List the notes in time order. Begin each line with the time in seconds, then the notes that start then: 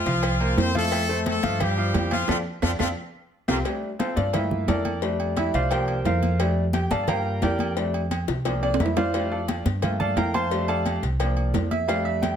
Already playing: F3 F4
0.06 C2 F3 F4 F5, cowbell, high conga
0.23 cowbell, high conga, low agogo, claves
0.40 A#3 A#4 C5, high conga, low agogo
0.57 F2 C4 C5, cowbell, high conga, low timbale
0.75 F3 A3 F4 A4 F5, high conga, low agogo
0.92 cowbell, high conga, low agogo, claves
1.09 A3 A4 C5, high conga
1.26 A3 A4, cowbell, high conga, low timbale, low agogo
1.43 G2 F3 F4 F5, cowbell, high conga
1.60 G3 G4, cowbell, high conga, low conga, low agogo, claves
1.77 F3 F4 F5, high conga
1.94 F2, cowbell, high conga, low timbale, low agogo
2.11 F3 F4 F5, high conga, low agogo, claves
2.28 F2 F3 C4 D4 F4 A4, cowbell, high conga, high timbale, claves
2.62 F2 F3 C4 D4 F4 A4, cowbell, high conga, high timbale, claves
2.79 F2 F3 C4 D4 F4 A4, cowbell, high conga, high timbale, claves
3.48 C2 F3 A#3 C4 F4 G4, cowbell, high conga, high timbale, claves
3.64 G3 A3 D4, cowbell, high conga, low agogo
3.83 high conga
3.99 C4 F4 A4 C5, cowbell, high conga, low timbale, low agogo
4.16 G2 D4 F4 A4 D5, cowbell, high conga
4.33 A3 A#3 E4 F4 E5, cowbell, high conga, low conga, low agogo
4.51 high conga, low conga
4.68 F2 D4 A4 A#4 D5, cowbell, high conga, low timbale, low agogo
4.85 high conga, low agogo
5.02 G3 A3 D4, cowbell, high conga
5.20 high conga, low agogo
5.37 E4 E5, cowbell, high conga, low timbale, low agogo
5.54 C2 F4 C5 D5 F5, cowbell, high conga
5.71 F3 A#3 D4 G4 A#4 C5 G5, cowbell, high conga, low agogo
5.88 high conga, low agogo
6.05 F2 F4 A#4 C5 F5, cowbell, high conga, low timbale
6.23 high conga, low agogo
6.40 G3 A3 D4, cowbell, high conga, low agogo
6.57 high conga
6.73 G4 G5, cowbell, high conga, low timbale, low agogo
6.91 G2 A4 D5 F5 A5, cowbell, high conga
7.03 G3 A5
7.07 A#3 F4 A#4 F5 G5 A#5, cowbell, high conga, low conga, low agogo
7.25 high conga
7.42 F2 G4 A#4 D5 G5, cowbell, high conga, low timbale, low agogo
7.59 high conga, low agogo
7.76 G3 A3 D4, cowbell, high conga
7.94 high conga, low agogo
8.11 cowbell, high conga, low timbale, low agogo
8.27 C2, cowbell, high bongo, high conga
8.45 F3 A#3 D4, cowbell, high bongo, high conga, low agogo
8.63 D4 D5, high conga, high timbale, low agogo
8.74 high timbale
8.79 F2 E4 E5, cowbell, low bongo, high conga
8.86 low timbale
8.97 F4 C5 D5 F5, low bongo, high conga, low timbale, low agogo
9.14 G3 A3 D4, cowbell, high conga, low agogo
9.32 D4 F4 A4 D5, high conga
9.48 cowbell, high conga, low timbale, low agogo
9.65 G2, cowbell, high conga
9.82 A3 A#3 F4, cowbell, high conga, low conga, low agogo
10.00 A4 D5 F5 A5, high conga, low conga
10.16 F2 A#4 F5 G5 A#5, cowbell, high conga, low timbale, low agogo
10.34 C5 F5 A5 C6, high conga, low agogo
10.51 G3 A3 D4, cowbell, high conga
10.68 A4 D5 F5 A5, high conga, low agogo
10.86 cowbell, high conga, low timbale, low agogo
11.03 C2, cowbell, high conga
11.20 F3 A#3 D4, cowbell, high conga, low agogo
11.37 high conga, low agogo
11.54 F2, cowbell, high conga, low timbale
11.71 E5, high conga, low agogo
11.88 G3 A3 D4 F5, cowbell, high conga, low agogo
12.05 E5, high conga
12.22 G5, cowbell, high conga, low timbale, low agogo